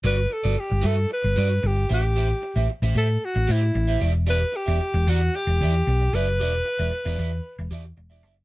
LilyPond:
<<
  \new Staff \with { instrumentName = "Clean electric guitar" } { \time 4/4 \key e \minor \tempo 4 = 113 <fis' b' d''>16 r8 <fis' b' d''>16 r8 <fis' b' e''>16 r8. <fis' b' d''>16 r8. <g' c'' e''>16 r16 | <g' c'' e''>16 r8 <g' c'' e''>16 r16 <g' c'' e''>16 <g' c'' e''>16 r8. <g' c'' e''>16 r8 <g' c'' e''>16 <g' d'' e''>16 r16 | <g' d'' e''>16 r8 <g' d'' e''>16 r8 <g' d'' fis''>16 r8. <g' d'' e''>16 r8. <g' d'' e''>16 r16 | <g' d'' e''>16 r8 <g' d'' e''>16 r16 <g' d'' e''>16 <g' d'' e''>16 r8. <g' d'' e''>16 r8 <g' d'' e''>16 <g' d'' e''>16 r16 | }
  \new Staff \with { instrumentName = "Alto saxophone" } { \time 4/4 \key e \minor b'8 a'8 g'8 a'8 b'4 g'8 g'8~ | g'4 r8 a'8 fis'8 e'4 r8 | b'8 g'4 fis'8 g'4. b'8~ | b'2~ b'8 r4. | }
  \new Staff \with { instrumentName = "Fingered electric bass" } { \clef bass \time 4/4 \key e \minor g,,8 r16 g,,16 r16 g,,16 g,8 r16 g,,16 g,8 g,,8 a,,8~ | a,,8 r16 a,,16 r16 a,,16 a,8 r16 a,,16 a,8 a,,8 e,,8~ | e,,8 r16 e,,16 r16 e,,16 e,8 r16 e,,16 e,8 b,,8 fis,,8 | e,,8 r16 e,,16 r16 e,,16 e,8 r16 e,,16 e,8 e,,8 fis,,8 | }
>>